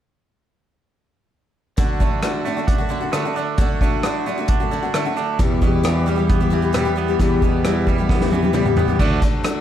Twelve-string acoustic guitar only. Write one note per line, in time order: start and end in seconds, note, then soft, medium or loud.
1.77 1.99 D3 medium
1.77 2.00 A3 medium
1.77 2.00 D4 medium
1.77 2.01 F#4 medium
2.00 2.22 D3 medium
2.00 2.22 A3 medium
2.00 2.23 D4 medium
2.00 2.23 F#4 medium
2.23 2.44 D3 medium
2.23 2.45 A3 medium
2.23 2.46 D4 medium
2.23 2.46 F#4 medium
2.45 2.57 D3 medium
2.45 2.57 A3 medium
2.45 2.57 D4 medium
2.45 2.55 F#4 medium
2.57 2.80 A3 soft
2.57 2.79 D4 soft
2.57 2.77 F#4 soft
2.78 2.89 A3 soft
2.78 2.89 D4 soft
2.78 2.90 F#4 soft
2.89 3.01 D3 medium
2.89 3.02 A3 medium
2.89 3.01 D4 medium
2.89 2.99 F#4 medium
3.01 3.13 A3 soft
3.01 3.13 D4 soft
3.01 3.13 F#4 soft
3.13 3.24 D3 medium
3.13 3.25 A3 medium
3.13 3.25 D4 medium
3.13 3.24 F#4 medium
3.25 3.36 A3 soft
3.25 3.37 D4 soft
3.25 3.36 F#4 medium
3.36 3.58 D3 medium
3.36 3.58 A3 medium
3.36 3.59 D4 medium
3.36 3.60 F#4 medium
3.59 3.80 D3 medium
3.59 3.81 A3 medium
3.59 3.82 D4 medium
3.59 3.82 F#4 medium
3.81 4.03 D3 medium
3.81 4.04 A3 medium
3.81 4.05 D4 medium
3.81 4.05 F#4 medium
4.05 4.25 D3 medium
4.05 4.26 A3 medium
4.05 4.27 D4 medium
4.05 4.28 F#4 medium
4.26 4.38 D3 medium
4.26 4.38 A3 medium
4.26 4.38 D4 medium
4.26 4.36 F#4 medium
4.38 4.62 A3 soft
4.38 4.60 D4 soft
4.38 4.59 F#4 medium
4.60 4.71 A3 soft
4.60 4.72 D4 soft
4.60 4.71 F#4 soft
4.71 4.83 D3 soft
4.71 4.83 A3 medium
4.71 4.83 D4 medium
4.71 4.81 F#4 medium
4.83 4.94 A3 soft
4.83 4.94 D4 soft
4.83 4.94 F#4 soft
4.94 5.05 D3 medium
4.94 5.06 A3 medium
4.94 5.05 D4 medium
4.94 5.04 F#4 medium
5.05 5.16 A3 soft
5.05 5.17 D4 soft
5.05 5.17 F#4 medium
5.17 5.39 D3 medium
5.17 5.39 A3 medium
5.17 5.40 D4 medium
5.17 5.40 F#4 medium
5.39 5.62 E2 medium
5.39 5.62 B2 medium
5.39 5.60 E3 medium
5.39 5.61 G3 medium
5.39 5.62 B3 medium
5.39 5.63 G4 medium
5.61 5.82 E3 medium
5.61 5.83 G3 medium
5.61 5.83 B3 medium
5.61 5.84 G4 medium
5.83 6.06 E2 medium
5.83 6.06 B2 medium
5.83 6.05 E3 medium
5.83 6.06 G3 medium
5.83 6.06 B3 medium
5.83 6.07 G4 medium
6.06 6.18 E3 medium
6.06 6.17 G3 medium
6.06 6.16 B3 medium
6.06 6.15 G4 medium
6.16 6.41 E3 soft
6.16 6.41 G3 soft
6.16 6.40 B3 soft
6.16 6.39 G4 soft
6.40 6.49 E3 soft
6.40 6.50 G3 soft
6.40 6.51 B3 soft
6.40 6.52 G4 soft
6.50 6.62 E3 medium
6.50 6.63 G3 medium
6.50 6.62 B3 medium
6.50 6.61 G4 medium
6.62 6.73 E3 soft
6.62 6.73 G3 soft
6.62 6.73 B3 soft
6.62 6.73 G4 soft
6.73 6.85 E2 medium
6.73 6.85 B2 medium
6.73 6.86 E3 medium
6.73 6.86 G3 medium
6.73 6.85 B3 medium
6.73 6.84 G4 medium
6.85 6.94 E3 soft
6.85 6.96 G3 soft
6.85 6.97 B3 soft
6.85 6.97 G4 medium
6.96 7.08 E3 medium
6.96 7.08 G3 medium
6.96 7.08 B3 medium
6.96 7.07 G4 medium
7.08 7.20 E3 soft
7.08 7.20 G3 soft
7.08 7.20 B3 soft
7.08 7.20 G4 medium
7.20 7.42 E2 medium
7.20 7.43 B2 medium
7.20 7.41 E3 medium
7.20 7.42 G3 medium
7.20 7.43 B3 medium
7.20 7.43 G4 medium
7.42 7.64 E3 medium
7.42 7.64 G3 medium
7.42 7.65 B3 medium
7.42 7.65 G4 medium
7.65 7.87 E2 medium
7.65 7.87 B2 medium
7.65 7.85 E3 medium
7.65 7.87 G3 medium
7.65 7.87 B3 medium
7.65 7.88 G4 medium
7.87 7.98 E3 medium
7.87 7.98 G3 medium
7.87 7.97 G4 medium
7.98 8.22 E3 soft
7.98 8.21 G3 soft
7.98 8.21 B3 medium
7.98 8.20 G4 soft
8.21 8.30 E3 soft
8.21 8.31 G3 soft
8.21 8.32 B3 soft
8.21 8.32 G4 soft
8.32 8.43 E3 medium
8.32 8.43 G3 medium
8.32 8.43 B3 medium
8.32 8.41 G4 medium
8.42 8.53 E3 soft
8.42 8.53 G3 soft
8.42 8.53 B3 soft
8.42 8.53 G4 soft
8.53 8.65 E2 medium
8.53 8.66 B2 medium
8.53 8.66 E3 medium
8.53 8.66 G3 medium
8.53 8.65 B3 medium
8.53 8.64 G4 medium
8.65 8.75 E3 soft
8.65 8.76 G3 soft
8.65 8.77 B3 soft
8.65 8.77 G4 medium
8.76 8.88 E3 medium
8.76 8.88 G3 medium
8.76 8.88 B3 medium
8.76 8.87 G4 medium
8.88 8.99 E3 soft
8.88 9.00 G3 soft
8.88 9.00 B3 soft
8.88 9.00 G4 soft
9.00 9.21 D3 medium
9.00 9.22 A3 medium
9.00 9.22 D4 medium
9.00 9.24 F#4 medium
9.22 9.42 D3 medium
9.22 9.43 A3 medium
9.22 9.44 D4 medium
9.22 9.45 F#4 medium
9.44 9.61 D3 medium
9.44 9.61 A3 medium
9.44 9.61 D4 medium
9.44 9.61 F#4 medium